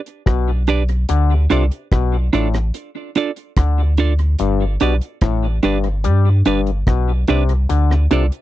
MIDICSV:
0, 0, Header, 1, 6, 480
1, 0, Start_track
1, 0, Tempo, 825309
1, 635, Time_signature, 4, 2, 24, 8
1, 4895, End_track
2, 0, Start_track
2, 0, Title_t, "Clean electric guitar"
2, 0, Program_c, 0, 27
2, 394, Note_on_c, 0, 62, 83
2, 398, Note_on_c, 0, 67, 90
2, 402, Note_on_c, 0, 71, 88
2, 405, Note_on_c, 0, 74, 95
2, 476, Note_off_c, 0, 62, 0
2, 478, Note_off_c, 0, 67, 0
2, 480, Note_off_c, 0, 71, 0
2, 481, Note_off_c, 0, 74, 0
2, 873, Note_on_c, 0, 62, 74
2, 878, Note_on_c, 0, 65, 92
2, 881, Note_on_c, 0, 69, 80
2, 884, Note_on_c, 0, 74, 91
2, 955, Note_off_c, 0, 62, 0
2, 958, Note_off_c, 0, 65, 0
2, 959, Note_off_c, 0, 69, 0
2, 961, Note_off_c, 0, 74, 0
2, 1355, Note_on_c, 0, 62, 76
2, 1359, Note_on_c, 0, 65, 78
2, 1362, Note_on_c, 0, 69, 74
2, 1366, Note_on_c, 0, 74, 81
2, 1436, Note_off_c, 0, 62, 0
2, 1438, Note_off_c, 0, 65, 0
2, 1440, Note_off_c, 0, 69, 0
2, 1442, Note_off_c, 0, 74, 0
2, 1836, Note_on_c, 0, 62, 76
2, 1842, Note_on_c, 0, 65, 79
2, 1846, Note_on_c, 0, 69, 84
2, 1848, Note_on_c, 0, 74, 92
2, 1917, Note_off_c, 0, 62, 0
2, 1920, Note_off_c, 0, 65, 0
2, 1922, Note_off_c, 0, 69, 0
2, 1923, Note_off_c, 0, 74, 0
2, 2316, Note_on_c, 0, 62, 89
2, 2320, Note_on_c, 0, 65, 95
2, 2322, Note_on_c, 0, 69, 102
2, 2327, Note_on_c, 0, 74, 106
2, 2397, Note_off_c, 0, 62, 0
2, 2399, Note_off_c, 0, 65, 0
2, 2400, Note_off_c, 0, 69, 0
2, 2402, Note_off_c, 0, 74, 0
2, 2796, Note_on_c, 0, 62, 74
2, 2800, Note_on_c, 0, 67, 87
2, 2804, Note_on_c, 0, 71, 91
2, 2807, Note_on_c, 0, 74, 94
2, 2877, Note_off_c, 0, 62, 0
2, 2879, Note_off_c, 0, 67, 0
2, 2881, Note_off_c, 0, 71, 0
2, 2883, Note_off_c, 0, 74, 0
2, 3274, Note_on_c, 0, 62, 77
2, 3280, Note_on_c, 0, 67, 73
2, 3283, Note_on_c, 0, 71, 78
2, 3286, Note_on_c, 0, 74, 82
2, 3356, Note_off_c, 0, 62, 0
2, 3359, Note_off_c, 0, 67, 0
2, 3361, Note_off_c, 0, 71, 0
2, 3362, Note_off_c, 0, 74, 0
2, 3756, Note_on_c, 0, 62, 71
2, 3760, Note_on_c, 0, 67, 67
2, 3762, Note_on_c, 0, 71, 79
2, 3766, Note_on_c, 0, 74, 75
2, 3837, Note_off_c, 0, 62, 0
2, 3839, Note_off_c, 0, 67, 0
2, 3840, Note_off_c, 0, 71, 0
2, 3842, Note_off_c, 0, 74, 0
2, 4236, Note_on_c, 0, 62, 94
2, 4240, Note_on_c, 0, 67, 87
2, 4243, Note_on_c, 0, 71, 95
2, 4247, Note_on_c, 0, 74, 96
2, 4317, Note_off_c, 0, 62, 0
2, 4319, Note_off_c, 0, 67, 0
2, 4320, Note_off_c, 0, 71, 0
2, 4322, Note_off_c, 0, 74, 0
2, 4718, Note_on_c, 0, 62, 93
2, 4722, Note_on_c, 0, 65, 95
2, 4726, Note_on_c, 0, 69, 101
2, 4729, Note_on_c, 0, 74, 93
2, 4797, Note_off_c, 0, 62, 0
2, 4800, Note_off_c, 0, 65, 0
2, 4802, Note_off_c, 0, 69, 0
2, 4803, Note_off_c, 0, 74, 0
2, 4895, End_track
3, 0, Start_track
3, 0, Title_t, "Clav"
3, 0, Program_c, 1, 7
3, 151, Note_on_c, 1, 47, 71
3, 297, Note_off_c, 1, 47, 0
3, 634, Note_on_c, 1, 50, 90
3, 778, Note_off_c, 1, 50, 0
3, 875, Note_on_c, 1, 48, 75
3, 949, Note_off_c, 1, 48, 0
3, 1116, Note_on_c, 1, 47, 75
3, 1260, Note_off_c, 1, 47, 0
3, 1357, Note_on_c, 1, 45, 70
3, 1501, Note_off_c, 1, 45, 0
3, 2076, Note_on_c, 1, 50, 69
3, 2220, Note_off_c, 1, 50, 0
3, 2557, Note_on_c, 1, 43, 92
3, 2701, Note_off_c, 1, 43, 0
3, 2797, Note_on_c, 1, 47, 66
3, 2870, Note_off_c, 1, 47, 0
3, 3035, Note_on_c, 1, 45, 83
3, 3180, Note_off_c, 1, 45, 0
3, 3275, Note_on_c, 1, 43, 70
3, 3420, Note_off_c, 1, 43, 0
3, 3513, Note_on_c, 1, 55, 68
3, 3658, Note_off_c, 1, 55, 0
3, 3756, Note_on_c, 1, 43, 71
3, 3900, Note_off_c, 1, 43, 0
3, 3996, Note_on_c, 1, 47, 69
3, 4140, Note_off_c, 1, 47, 0
3, 4235, Note_on_c, 1, 48, 76
3, 4379, Note_off_c, 1, 48, 0
3, 4474, Note_on_c, 1, 50, 84
3, 4619, Note_off_c, 1, 50, 0
3, 4715, Note_on_c, 1, 48, 76
3, 4789, Note_off_c, 1, 48, 0
3, 4895, End_track
4, 0, Start_track
4, 0, Title_t, "Sub bass"
4, 0, Program_c, 2, 38
4, 157, Note_on_c, 2, 35, 90
4, 613, Note_off_c, 2, 35, 0
4, 641, Note_on_c, 2, 38, 98
4, 858, Note_off_c, 2, 38, 0
4, 882, Note_on_c, 2, 36, 105
4, 991, Note_off_c, 2, 36, 0
4, 1119, Note_on_c, 2, 35, 88
4, 1337, Note_off_c, 2, 35, 0
4, 1362, Note_on_c, 2, 33, 99
4, 1579, Note_off_c, 2, 33, 0
4, 2078, Note_on_c, 2, 38, 98
4, 2534, Note_off_c, 2, 38, 0
4, 2562, Note_on_c, 2, 31, 110
4, 2779, Note_off_c, 2, 31, 0
4, 2803, Note_on_c, 2, 35, 94
4, 2912, Note_off_c, 2, 35, 0
4, 3038, Note_on_c, 2, 33, 97
4, 3257, Note_off_c, 2, 33, 0
4, 3283, Note_on_c, 2, 31, 97
4, 3522, Note_on_c, 2, 43, 100
4, 3531, Note_off_c, 2, 31, 0
4, 3739, Note_off_c, 2, 43, 0
4, 3763, Note_on_c, 2, 31, 79
4, 3979, Note_off_c, 2, 31, 0
4, 3999, Note_on_c, 2, 35, 91
4, 4217, Note_off_c, 2, 35, 0
4, 4243, Note_on_c, 2, 36, 97
4, 4459, Note_off_c, 2, 36, 0
4, 4483, Note_on_c, 2, 38, 98
4, 4699, Note_off_c, 2, 38, 0
4, 4722, Note_on_c, 2, 36, 106
4, 4831, Note_off_c, 2, 36, 0
4, 4895, End_track
5, 0, Start_track
5, 0, Title_t, "Muted clean electric guitar strokes"
5, 1481, Note_on_c, 9, 29, 43
5, 1539, Note_off_c, 9, 29, 0
5, 4895, End_track
6, 0, Start_track
6, 0, Title_t, "Drums"
6, 36, Note_on_c, 9, 42, 42
6, 94, Note_off_c, 9, 42, 0
6, 153, Note_on_c, 9, 36, 116
6, 154, Note_on_c, 9, 42, 91
6, 158, Note_on_c, 9, 37, 109
6, 211, Note_off_c, 9, 36, 0
6, 212, Note_off_c, 9, 42, 0
6, 216, Note_off_c, 9, 37, 0
6, 390, Note_on_c, 9, 42, 69
6, 448, Note_off_c, 9, 42, 0
6, 515, Note_on_c, 9, 42, 53
6, 573, Note_off_c, 9, 42, 0
6, 632, Note_on_c, 9, 42, 92
6, 691, Note_off_c, 9, 42, 0
6, 874, Note_on_c, 9, 42, 71
6, 932, Note_off_c, 9, 42, 0
6, 997, Note_on_c, 9, 42, 46
6, 1055, Note_off_c, 9, 42, 0
6, 1114, Note_on_c, 9, 36, 106
6, 1114, Note_on_c, 9, 42, 73
6, 1120, Note_on_c, 9, 37, 104
6, 1172, Note_off_c, 9, 42, 0
6, 1173, Note_off_c, 9, 36, 0
6, 1178, Note_off_c, 9, 37, 0
6, 1355, Note_on_c, 9, 42, 74
6, 1414, Note_off_c, 9, 42, 0
6, 1475, Note_on_c, 9, 42, 43
6, 1480, Note_on_c, 9, 37, 62
6, 1533, Note_off_c, 9, 42, 0
6, 1538, Note_off_c, 9, 37, 0
6, 1594, Note_on_c, 9, 42, 73
6, 1652, Note_off_c, 9, 42, 0
6, 1834, Note_on_c, 9, 42, 78
6, 1892, Note_off_c, 9, 42, 0
6, 1956, Note_on_c, 9, 42, 42
6, 2014, Note_off_c, 9, 42, 0
6, 2073, Note_on_c, 9, 42, 91
6, 2074, Note_on_c, 9, 36, 122
6, 2077, Note_on_c, 9, 37, 106
6, 2132, Note_off_c, 9, 36, 0
6, 2132, Note_off_c, 9, 42, 0
6, 2135, Note_off_c, 9, 37, 0
6, 2311, Note_on_c, 9, 42, 68
6, 2369, Note_off_c, 9, 42, 0
6, 2434, Note_on_c, 9, 42, 50
6, 2493, Note_off_c, 9, 42, 0
6, 2551, Note_on_c, 9, 42, 85
6, 2609, Note_off_c, 9, 42, 0
6, 2792, Note_on_c, 9, 42, 79
6, 2850, Note_off_c, 9, 42, 0
6, 2915, Note_on_c, 9, 42, 45
6, 2973, Note_off_c, 9, 42, 0
6, 3031, Note_on_c, 9, 42, 78
6, 3034, Note_on_c, 9, 36, 111
6, 3036, Note_on_c, 9, 37, 114
6, 3089, Note_off_c, 9, 42, 0
6, 3092, Note_off_c, 9, 36, 0
6, 3094, Note_off_c, 9, 37, 0
6, 3273, Note_on_c, 9, 42, 77
6, 3331, Note_off_c, 9, 42, 0
6, 3395, Note_on_c, 9, 42, 42
6, 3453, Note_off_c, 9, 42, 0
6, 3514, Note_on_c, 9, 42, 83
6, 3572, Note_off_c, 9, 42, 0
6, 3753, Note_on_c, 9, 42, 81
6, 3812, Note_off_c, 9, 42, 0
6, 3877, Note_on_c, 9, 42, 43
6, 3936, Note_off_c, 9, 42, 0
6, 3995, Note_on_c, 9, 36, 121
6, 3995, Note_on_c, 9, 42, 89
6, 3999, Note_on_c, 9, 37, 108
6, 4053, Note_off_c, 9, 36, 0
6, 4053, Note_off_c, 9, 42, 0
6, 4057, Note_off_c, 9, 37, 0
6, 4231, Note_on_c, 9, 42, 71
6, 4290, Note_off_c, 9, 42, 0
6, 4356, Note_on_c, 9, 42, 52
6, 4414, Note_off_c, 9, 42, 0
6, 4476, Note_on_c, 9, 42, 84
6, 4534, Note_off_c, 9, 42, 0
6, 4602, Note_on_c, 9, 37, 62
6, 4660, Note_off_c, 9, 37, 0
6, 4716, Note_on_c, 9, 42, 79
6, 4774, Note_off_c, 9, 42, 0
6, 4839, Note_on_c, 9, 42, 44
6, 4895, Note_off_c, 9, 42, 0
6, 4895, End_track
0, 0, End_of_file